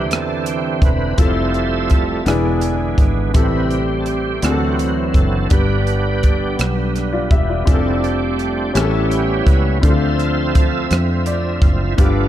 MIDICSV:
0, 0, Header, 1, 6, 480
1, 0, Start_track
1, 0, Tempo, 720288
1, 787, Time_signature, 6, 3, 24, 8
1, 8185, End_track
2, 0, Start_track
2, 0, Title_t, "Grand piano"
2, 0, Program_c, 0, 0
2, 0, Control_c, 0, 64, 127
2, 0, Note_on_c, 0, 48, 43
2, 0, Note_on_c, 0, 60, 51
2, 0, Note_on_c, 0, 64, 44
2, 0, Note_on_c, 0, 67, 40
2, 0, Note_on_c, 0, 71, 50
2, 756, Note_off_c, 0, 60, 0
2, 759, Note_off_c, 0, 64, 0
2, 762, Note_off_c, 0, 67, 0
2, 767, Note_off_c, 0, 71, 0
2, 783, Note_on_c, 0, 60, 51
2, 786, Note_on_c, 0, 64, 49
2, 791, Note_on_c, 0, 65, 44
2, 795, Control_c, 0, 64, 0
2, 795, Note_on_c, 0, 69, 57
2, 798, Note_off_c, 0, 48, 0
2, 915, Control_c, 0, 64, 127
2, 1502, Note_off_c, 0, 64, 0
2, 1503, Note_on_c, 0, 59, 65
2, 1506, Note_off_c, 0, 60, 0
2, 1509, Note_on_c, 0, 62, 64
2, 1510, Note_on_c, 0, 52, 67
2, 1511, Note_off_c, 0, 65, 0
2, 1512, Note_on_c, 0, 64, 61
2, 1513, Note_off_c, 0, 69, 0
2, 1516, Note_on_c, 0, 68, 71
2, 1519, Control_c, 0, 64, 0
2, 1619, Control_c, 0, 64, 127
2, 2204, Note_off_c, 0, 52, 0
2, 2219, Note_off_c, 0, 64, 0
2, 2224, Note_on_c, 0, 60, 53
2, 2227, Note_off_c, 0, 59, 0
2, 2229, Note_on_c, 0, 64, 50
2, 2230, Note_off_c, 0, 62, 0
2, 2232, Note_on_c, 0, 45, 51
2, 2234, Note_off_c, 0, 68, 0
2, 2234, Note_on_c, 0, 67, 43
2, 2239, Control_c, 0, 64, 0
2, 2241, Note_on_c, 0, 69, 58
2, 2351, Control_c, 0, 64, 127
2, 2925, Note_off_c, 0, 45, 0
2, 2943, Note_off_c, 0, 60, 0
2, 2950, Note_off_c, 0, 64, 0
2, 2951, Note_on_c, 0, 62, 50
2, 2953, Note_off_c, 0, 67, 0
2, 2953, Note_on_c, 0, 60, 56
2, 2956, Note_off_c, 0, 69, 0
2, 2956, Note_on_c, 0, 50, 59
2, 2957, Note_on_c, 0, 66, 50
2, 2960, Control_c, 0, 64, 0
2, 2963, Note_on_c, 0, 68, 48
2, 3001, Note_off_c, 0, 68, 0
2, 3004, Note_on_c, 0, 69, 63
2, 3089, Control_c, 0, 64, 127
2, 3648, Note_off_c, 0, 50, 0
2, 3657, Note_off_c, 0, 62, 0
2, 3660, Note_on_c, 0, 59, 48
2, 3667, Note_on_c, 0, 62, 46
2, 3670, Note_on_c, 0, 43, 47
2, 3673, Note_off_c, 0, 60, 0
2, 3674, Note_on_c, 0, 67, 40
2, 3675, Note_off_c, 0, 66, 0
2, 3680, Control_c, 0, 64, 0
2, 3681, Note_on_c, 0, 71, 51
2, 3698, Note_off_c, 0, 69, 0
2, 3781, Control_c, 0, 64, 127
2, 4365, Note_off_c, 0, 43, 0
2, 4614, Note_off_c, 0, 67, 0
2, 4618, Note_off_c, 0, 71, 0
2, 4749, Note_on_c, 0, 74, 55
2, 4752, Note_on_c, 0, 65, 43
2, 4864, Note_off_c, 0, 74, 0
2, 4866, Note_off_c, 0, 65, 0
2, 4873, Note_on_c, 0, 76, 59
2, 4876, Note_on_c, 0, 67, 49
2, 4987, Note_off_c, 0, 76, 0
2, 4988, Note_off_c, 0, 67, 0
2, 4989, Note_on_c, 0, 74, 44
2, 4995, Note_on_c, 0, 65, 38
2, 5080, Note_off_c, 0, 59, 0
2, 5083, Note_off_c, 0, 62, 0
2, 5100, Note_on_c, 0, 60, 53
2, 5103, Note_off_c, 0, 65, 0
2, 5108, Note_on_c, 0, 62, 45
2, 5113, Note_on_c, 0, 65, 48
2, 5113, Note_on_c, 0, 68, 42
2, 5120, Control_c, 0, 64, 0
2, 5156, Note_off_c, 0, 68, 0
2, 5159, Note_on_c, 0, 69, 55
2, 5219, Note_off_c, 0, 74, 0
2, 5229, Control_c, 0, 64, 127
2, 5820, Note_on_c, 0, 61, 55
2, 5824, Note_on_c, 0, 64, 44
2, 5826, Note_off_c, 0, 60, 0
2, 5829, Note_off_c, 0, 62, 0
2, 5829, Note_on_c, 0, 45, 47
2, 5831, Note_on_c, 0, 67, 53
2, 5832, Note_off_c, 0, 65, 0
2, 5833, Note_on_c, 0, 68, 46
2, 5839, Control_c, 0, 64, 0
2, 5855, Note_off_c, 0, 69, 0
2, 5874, Note_on_c, 0, 69, 58
2, 5876, Note_off_c, 0, 68, 0
2, 5951, Control_c, 0, 64, 127
2, 6522, Note_off_c, 0, 45, 0
2, 6540, Note_on_c, 0, 60, 44
2, 6545, Note_off_c, 0, 61, 0
2, 6545, Note_off_c, 0, 64, 0
2, 6548, Note_on_c, 0, 62, 51
2, 6550, Note_off_c, 0, 67, 0
2, 6552, Note_on_c, 0, 50, 54
2, 6553, Note_off_c, 0, 69, 0
2, 6555, Note_on_c, 0, 64, 37
2, 6559, Control_c, 0, 64, 0
2, 6563, Note_on_c, 0, 69, 50
2, 6596, Note_off_c, 0, 64, 0
2, 6599, Note_on_c, 0, 65, 48
2, 6674, Control_c, 0, 64, 127
2, 7242, Note_off_c, 0, 50, 0
2, 7506, Note_on_c, 0, 74, 55
2, 7953, Note_off_c, 0, 60, 0
2, 7957, Note_off_c, 0, 62, 0
2, 7958, Note_off_c, 0, 74, 0
2, 7965, Note_off_c, 0, 69, 0
2, 7974, Note_on_c, 0, 59, 50
2, 7976, Note_off_c, 0, 65, 0
2, 7980, Note_on_c, 0, 62, 49
2, 7985, Note_on_c, 0, 43, 54
2, 7986, Note_on_c, 0, 65, 47
2, 7993, Control_c, 0, 64, 0
2, 7994, Note_on_c, 0, 67, 62
2, 8121, Control_c, 0, 64, 127
2, 8185, Note_off_c, 0, 43, 0
2, 8185, Note_off_c, 0, 59, 0
2, 8185, Note_off_c, 0, 62, 0
2, 8185, Note_off_c, 0, 65, 0
2, 8185, Note_off_c, 0, 67, 0
2, 8185, End_track
3, 0, Start_track
3, 0, Title_t, "Tonewheel organ"
3, 0, Program_c, 1, 16
3, 0, Note_on_c, 1, 50, 44
3, 0, Note_on_c, 1, 52, 41
3, 0, Note_on_c, 1, 60, 49
3, 0, Note_on_c, 1, 67, 66
3, 74, Note_off_c, 1, 67, 0
3, 85, Note_on_c, 1, 69, 72
3, 299, Note_off_c, 1, 69, 0
3, 316, Note_on_c, 1, 67, 80
3, 535, Note_off_c, 1, 67, 0
3, 565, Note_on_c, 1, 71, 80
3, 759, Note_off_c, 1, 50, 0
3, 762, Note_off_c, 1, 52, 0
3, 767, Note_off_c, 1, 60, 0
3, 794, Note_on_c, 1, 53, 44
3, 795, Note_on_c, 1, 55, 40
3, 798, Note_on_c, 1, 57, 54
3, 803, Note_off_c, 1, 71, 0
3, 803, Note_on_c, 1, 69, 57
3, 806, Note_on_c, 1, 72, 75
3, 806, Note_on_c, 1, 76, 57
3, 1311, Note_off_c, 1, 72, 0
3, 1485, Note_off_c, 1, 53, 0
3, 1486, Note_off_c, 1, 55, 0
3, 1487, Note_off_c, 1, 57, 0
3, 1490, Note_off_c, 1, 69, 0
3, 1492, Note_off_c, 1, 76, 0
3, 1520, Note_on_c, 1, 50, 41
3, 1520, Note_on_c, 1, 56, 38
3, 1527, Note_on_c, 1, 59, 47
3, 2209, Note_off_c, 1, 50, 0
3, 2209, Note_off_c, 1, 56, 0
3, 2212, Note_off_c, 1, 59, 0
3, 2233, Note_on_c, 1, 48, 48
3, 2236, Note_on_c, 1, 64, 70
3, 2239, Note_on_c, 1, 71, 48
3, 2241, Note_on_c, 1, 60, 46
3, 2242, Note_on_c, 1, 55, 56
3, 2456, Note_off_c, 1, 64, 0
3, 2469, Note_on_c, 1, 67, 63
3, 2551, Note_off_c, 1, 48, 0
3, 2555, Note_off_c, 1, 71, 0
3, 2668, Note_on_c, 1, 69, 59
3, 2669, Note_off_c, 1, 67, 0
3, 2713, Note_off_c, 1, 69, 0
3, 2716, Note_on_c, 1, 67, 72
3, 2930, Note_off_c, 1, 60, 0
3, 2931, Note_off_c, 1, 55, 0
3, 2954, Note_on_c, 1, 69, 68
3, 2961, Note_off_c, 1, 67, 0
3, 2962, Note_on_c, 1, 52, 44
3, 2964, Note_on_c, 1, 54, 38
3, 2967, Note_on_c, 1, 60, 52
3, 2967, Note_on_c, 1, 66, 50
3, 3149, Note_on_c, 1, 67, 52
3, 3151, Note_off_c, 1, 69, 0
3, 3174, Note_off_c, 1, 66, 0
3, 3182, Note_on_c, 1, 66, 79
3, 3194, Note_off_c, 1, 67, 0
3, 3292, Note_off_c, 1, 66, 0
3, 3421, Note_on_c, 1, 69, 74
3, 3651, Note_off_c, 1, 52, 0
3, 3652, Note_off_c, 1, 54, 0
3, 3653, Note_off_c, 1, 60, 0
3, 3672, Note_on_c, 1, 71, 73
3, 3674, Note_off_c, 1, 69, 0
3, 3678, Note_on_c, 1, 55, 43
3, 3681, Note_on_c, 1, 59, 36
3, 3682, Note_on_c, 1, 67, 54
3, 3684, Note_on_c, 1, 62, 60
3, 4186, Note_off_c, 1, 71, 0
3, 4371, Note_off_c, 1, 67, 0
3, 4373, Note_off_c, 1, 62, 0
3, 5088, Note_off_c, 1, 55, 0
3, 5090, Note_off_c, 1, 59, 0
3, 5107, Note_on_c, 1, 55, 44
3, 5110, Note_on_c, 1, 64, 65
3, 5112, Note_on_c, 1, 57, 46
3, 5117, Note_on_c, 1, 62, 47
3, 5118, Note_on_c, 1, 60, 50
3, 5351, Note_on_c, 1, 67, 55
3, 5358, Note_off_c, 1, 64, 0
3, 5588, Note_off_c, 1, 67, 0
3, 5596, Note_on_c, 1, 67, 76
3, 5802, Note_off_c, 1, 55, 0
3, 5805, Note_off_c, 1, 57, 0
3, 5807, Note_off_c, 1, 62, 0
3, 5808, Note_off_c, 1, 60, 0
3, 5817, Note_off_c, 1, 67, 0
3, 5821, Note_on_c, 1, 55, 42
3, 5827, Note_on_c, 1, 59, 37
3, 5828, Note_on_c, 1, 61, 52
3, 5830, Note_on_c, 1, 69, 69
3, 5832, Note_on_c, 1, 64, 46
3, 6053, Note_off_c, 1, 69, 0
3, 6064, Note_on_c, 1, 67, 75
3, 6304, Note_on_c, 1, 71, 78
3, 6314, Note_off_c, 1, 67, 0
3, 6413, Note_off_c, 1, 71, 0
3, 6518, Note_off_c, 1, 55, 0
3, 6521, Note_off_c, 1, 59, 0
3, 6524, Note_off_c, 1, 61, 0
3, 6524, Note_off_c, 1, 64, 0
3, 6545, Note_on_c, 1, 60, 37
3, 6546, Note_on_c, 1, 53, 48
3, 6552, Note_on_c, 1, 69, 58
3, 6553, Note_on_c, 1, 65, 60
3, 6555, Note_on_c, 1, 72, 78
3, 6555, Note_on_c, 1, 76, 53
3, 7065, Note_off_c, 1, 72, 0
3, 7242, Note_off_c, 1, 69, 0
3, 7243, Note_off_c, 1, 65, 0
3, 7733, Note_off_c, 1, 53, 0
3, 7738, Note_off_c, 1, 60, 0
3, 7741, Note_on_c, 1, 53, 41
3, 7746, Note_on_c, 1, 60, 37
3, 7747, Note_on_c, 1, 65, 47
3, 7936, Note_on_c, 1, 64, 49
3, 7959, Note_off_c, 1, 53, 0
3, 7961, Note_off_c, 1, 60, 0
3, 7961, Note_off_c, 1, 76, 0
3, 7962, Note_off_c, 1, 65, 0
3, 7979, Note_on_c, 1, 57, 45
3, 7980, Note_on_c, 1, 59, 55
3, 7984, Note_off_c, 1, 64, 0
3, 7985, Note_on_c, 1, 62, 49
3, 7985, Note_on_c, 1, 65, 73
3, 8185, Note_off_c, 1, 57, 0
3, 8185, Note_off_c, 1, 59, 0
3, 8185, Note_off_c, 1, 62, 0
3, 8185, Note_off_c, 1, 65, 0
3, 8185, End_track
4, 0, Start_track
4, 0, Title_t, "French horn section"
4, 0, Program_c, 2, 60
4, 0, Note_on_c, 2, 55, 61
4, 0, Note_on_c, 2, 60, 62
4, 0, Note_on_c, 2, 71, 58
4, 0, Note_on_c, 2, 76, 66
4, 775, Note_off_c, 2, 71, 0
4, 776, Note_off_c, 2, 55, 0
4, 792, Note_on_c, 2, 53, 57
4, 794, Note_on_c, 2, 57, 56
4, 1490, Note_off_c, 2, 60, 0
4, 1490, Note_off_c, 2, 76, 0
4, 1500, Note_on_c, 2, 56, 53
4, 1504, Note_off_c, 2, 53, 0
4, 1504, Note_on_c, 2, 52, 72
4, 1505, Note_off_c, 2, 57, 0
4, 1508, Note_on_c, 2, 59, 56
4, 1508, Note_on_c, 2, 62, 69
4, 2218, Note_off_c, 2, 56, 0
4, 2222, Note_off_c, 2, 59, 0
4, 2222, Note_off_c, 2, 62, 0
4, 2228, Note_on_c, 2, 60, 76
4, 2230, Note_on_c, 2, 55, 58
4, 2233, Note_on_c, 2, 57, 58
4, 2934, Note_off_c, 2, 52, 0
4, 2944, Note_off_c, 2, 55, 0
4, 2953, Note_on_c, 2, 54, 58
4, 2955, Note_on_c, 2, 50, 67
4, 3656, Note_off_c, 2, 60, 0
4, 3659, Note_off_c, 2, 57, 0
4, 3666, Note_off_c, 2, 54, 0
4, 3689, Note_on_c, 2, 59, 54
4, 3689, Note_on_c, 2, 62, 73
4, 3691, Note_on_c, 2, 55, 62
4, 5093, Note_off_c, 2, 50, 0
4, 5106, Note_off_c, 2, 62, 0
4, 5107, Note_off_c, 2, 59, 0
4, 5108, Note_off_c, 2, 55, 0
4, 5114, Note_on_c, 2, 53, 58
4, 5116, Note_on_c, 2, 60, 52
4, 5116, Note_on_c, 2, 62, 65
4, 5119, Note_on_c, 2, 57, 58
4, 5825, Note_off_c, 2, 53, 0
4, 5827, Note_off_c, 2, 60, 0
4, 5827, Note_off_c, 2, 62, 0
4, 5828, Note_off_c, 2, 57, 0
4, 5835, Note_on_c, 2, 57, 62
4, 5836, Note_on_c, 2, 61, 55
4, 5836, Note_on_c, 2, 64, 66
4, 5840, Note_on_c, 2, 55, 58
4, 6545, Note_off_c, 2, 61, 0
4, 6545, Note_off_c, 2, 64, 0
4, 6547, Note_off_c, 2, 55, 0
4, 6549, Note_on_c, 2, 60, 61
4, 6549, Note_on_c, 2, 62, 70
4, 6553, Note_on_c, 2, 53, 64
4, 7965, Note_off_c, 2, 57, 0
4, 7970, Note_off_c, 2, 60, 0
4, 7990, Note_on_c, 2, 55, 63
4, 8185, Note_off_c, 2, 53, 0
4, 8185, Note_off_c, 2, 55, 0
4, 8185, Note_off_c, 2, 62, 0
4, 8185, End_track
5, 0, Start_track
5, 0, Title_t, "Fingered electric bass"
5, 0, Program_c, 3, 33
5, 64, Note_on_c, 3, 40, 79
5, 519, Note_off_c, 3, 40, 0
5, 543, Note_on_c, 3, 28, 69
5, 766, Note_off_c, 3, 28, 0
5, 789, Note_on_c, 3, 29, 71
5, 1483, Note_off_c, 3, 29, 0
5, 1507, Note_on_c, 3, 28, 93
5, 1962, Note_off_c, 3, 28, 0
5, 1984, Note_on_c, 3, 32, 79
5, 2208, Note_off_c, 3, 32, 0
5, 2229, Note_on_c, 3, 33, 80
5, 2924, Note_off_c, 3, 33, 0
5, 2950, Note_on_c, 3, 38, 74
5, 3405, Note_off_c, 3, 38, 0
5, 3428, Note_on_c, 3, 30, 74
5, 3651, Note_off_c, 3, 30, 0
5, 3672, Note_on_c, 3, 31, 76
5, 4366, Note_off_c, 3, 31, 0
5, 4393, Note_on_c, 3, 35, 63
5, 4846, Note_off_c, 3, 35, 0
5, 4870, Note_on_c, 3, 28, 69
5, 5092, Note_off_c, 3, 28, 0
5, 5114, Note_on_c, 3, 29, 64
5, 5806, Note_off_c, 3, 29, 0
5, 5831, Note_on_c, 3, 33, 76
5, 6284, Note_off_c, 3, 33, 0
5, 6307, Note_on_c, 3, 37, 68
5, 6529, Note_off_c, 3, 37, 0
5, 6553, Note_on_c, 3, 38, 76
5, 7243, Note_off_c, 3, 38, 0
5, 7270, Note_on_c, 3, 41, 77
5, 7721, Note_off_c, 3, 41, 0
5, 7741, Note_on_c, 3, 30, 73
5, 7963, Note_off_c, 3, 30, 0
5, 7987, Note_on_c, 3, 31, 73
5, 8185, Note_off_c, 3, 31, 0
5, 8185, End_track
6, 0, Start_track
6, 0, Title_t, "Drums"
6, 73, Note_on_c, 9, 42, 73
6, 87, Note_on_c, 9, 37, 95
6, 140, Note_off_c, 9, 42, 0
6, 153, Note_off_c, 9, 37, 0
6, 307, Note_on_c, 9, 42, 58
6, 374, Note_off_c, 9, 42, 0
6, 545, Note_on_c, 9, 36, 72
6, 552, Note_on_c, 9, 42, 33
6, 612, Note_off_c, 9, 36, 0
6, 618, Note_off_c, 9, 42, 0
6, 785, Note_on_c, 9, 42, 71
6, 788, Note_on_c, 9, 36, 81
6, 852, Note_off_c, 9, 42, 0
6, 855, Note_off_c, 9, 36, 0
6, 1028, Note_on_c, 9, 42, 34
6, 1094, Note_off_c, 9, 42, 0
6, 1264, Note_on_c, 9, 42, 43
6, 1271, Note_on_c, 9, 36, 60
6, 1330, Note_off_c, 9, 42, 0
6, 1338, Note_off_c, 9, 36, 0
6, 1507, Note_on_c, 9, 42, 69
6, 1521, Note_on_c, 9, 37, 92
6, 1574, Note_off_c, 9, 42, 0
6, 1588, Note_off_c, 9, 37, 0
6, 1741, Note_on_c, 9, 42, 50
6, 1808, Note_off_c, 9, 42, 0
6, 1985, Note_on_c, 9, 36, 73
6, 1988, Note_on_c, 9, 42, 38
6, 2051, Note_off_c, 9, 36, 0
6, 2055, Note_off_c, 9, 42, 0
6, 2228, Note_on_c, 9, 42, 70
6, 2230, Note_on_c, 9, 36, 88
6, 2295, Note_off_c, 9, 42, 0
6, 2296, Note_off_c, 9, 36, 0
6, 2469, Note_on_c, 9, 42, 35
6, 2536, Note_off_c, 9, 42, 0
6, 2705, Note_on_c, 9, 42, 44
6, 2771, Note_off_c, 9, 42, 0
6, 2949, Note_on_c, 9, 42, 76
6, 2963, Note_on_c, 9, 37, 84
6, 3015, Note_off_c, 9, 42, 0
6, 3029, Note_off_c, 9, 37, 0
6, 3194, Note_on_c, 9, 42, 52
6, 3260, Note_off_c, 9, 42, 0
6, 3427, Note_on_c, 9, 36, 64
6, 3431, Note_on_c, 9, 42, 37
6, 3494, Note_off_c, 9, 36, 0
6, 3498, Note_off_c, 9, 42, 0
6, 3667, Note_on_c, 9, 42, 64
6, 3672, Note_on_c, 9, 36, 90
6, 3733, Note_off_c, 9, 42, 0
6, 3739, Note_off_c, 9, 36, 0
6, 3911, Note_on_c, 9, 42, 38
6, 3978, Note_off_c, 9, 42, 0
6, 4152, Note_on_c, 9, 42, 38
6, 4156, Note_on_c, 9, 36, 62
6, 4219, Note_off_c, 9, 42, 0
6, 4223, Note_off_c, 9, 36, 0
6, 4392, Note_on_c, 9, 42, 74
6, 4406, Note_on_c, 9, 37, 91
6, 4458, Note_off_c, 9, 42, 0
6, 4472, Note_off_c, 9, 37, 0
6, 4635, Note_on_c, 9, 42, 51
6, 4652, Note_on_c, 9, 37, 29
6, 4702, Note_off_c, 9, 42, 0
6, 4719, Note_off_c, 9, 37, 0
6, 4870, Note_on_c, 9, 36, 80
6, 4877, Note_on_c, 9, 42, 33
6, 4936, Note_off_c, 9, 36, 0
6, 4944, Note_off_c, 9, 42, 0
6, 5113, Note_on_c, 9, 36, 83
6, 5113, Note_on_c, 9, 42, 69
6, 5179, Note_off_c, 9, 36, 0
6, 5180, Note_off_c, 9, 42, 0
6, 5358, Note_on_c, 9, 42, 37
6, 5424, Note_off_c, 9, 42, 0
6, 5592, Note_on_c, 9, 42, 41
6, 5659, Note_off_c, 9, 42, 0
6, 5832, Note_on_c, 9, 42, 73
6, 5846, Note_on_c, 9, 37, 95
6, 5899, Note_off_c, 9, 42, 0
6, 5913, Note_off_c, 9, 37, 0
6, 6074, Note_on_c, 9, 42, 53
6, 6140, Note_off_c, 9, 42, 0
6, 6308, Note_on_c, 9, 36, 72
6, 6315, Note_on_c, 9, 42, 39
6, 6375, Note_off_c, 9, 36, 0
6, 6381, Note_off_c, 9, 42, 0
6, 6552, Note_on_c, 9, 36, 100
6, 6553, Note_on_c, 9, 42, 70
6, 6618, Note_off_c, 9, 36, 0
6, 6619, Note_off_c, 9, 42, 0
6, 6793, Note_on_c, 9, 42, 35
6, 6860, Note_off_c, 9, 42, 0
6, 7030, Note_on_c, 9, 42, 45
6, 7033, Note_on_c, 9, 36, 75
6, 7097, Note_off_c, 9, 42, 0
6, 7099, Note_off_c, 9, 36, 0
6, 7268, Note_on_c, 9, 42, 70
6, 7282, Note_on_c, 9, 37, 91
6, 7335, Note_off_c, 9, 42, 0
6, 7349, Note_off_c, 9, 37, 0
6, 7503, Note_on_c, 9, 42, 54
6, 7570, Note_off_c, 9, 42, 0
6, 7742, Note_on_c, 9, 36, 81
6, 7743, Note_on_c, 9, 42, 32
6, 7808, Note_off_c, 9, 36, 0
6, 7809, Note_off_c, 9, 42, 0
6, 7984, Note_on_c, 9, 42, 69
6, 7986, Note_on_c, 9, 36, 87
6, 8051, Note_off_c, 9, 42, 0
6, 8053, Note_off_c, 9, 36, 0
6, 8185, End_track
0, 0, End_of_file